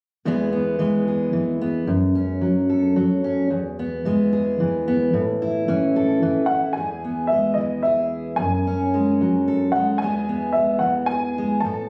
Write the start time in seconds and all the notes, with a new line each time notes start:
0.25 E2 E3 G#3 B3 G#4
0.53 B3
0.79 E3 G#3
1.08 G#4
1.33 E3
1.61 B3
1.87 F#2
2.15 C#4
2.41 F#3
2.70 A4
2.96 F#3
3.24 C#4
3.50 E2
3.79 B3
4.05 E3 G#3
4.33 G#4
4.60 E3
4.88 B3
5.14 A2
5.42 E4
5.68 E3 C#4
5.96 A4
6.23 E3
6.46 F#5
6.51 E4
6.73 G#5
6.77 E2 G#4
7.04 B3
7.27 E5
7.32 G#3
7.54 D#5
7.58 E3
7.83 G#4 E5
8.36 F#2 G#5
8.67 C#4
8.94 G#3
9.21 F#3
9.48 A4
9.72 G#3 F#5
9.98 E2 E3 G#5
10.03 G#3 B3 G#4
10.29 B3
10.53 G#3 E5
10.79 E3 F#5
11.06 G#5
11.11 G#4
11.38 G#3
11.60 A2 A5
11.65 A4